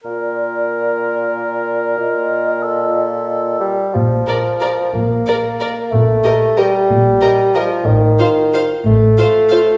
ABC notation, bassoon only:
X:1
M:3/4
L:1/8
Q:1/4=183
K:Bb
V:1 name="Bassoon" clef=bass
B,,6- | B,,6 | B,,6- | B,,4 G,2 |
F,6 | B,6 | A,4 G,2- | G,4 F,2 |
E,6 | A,6 |]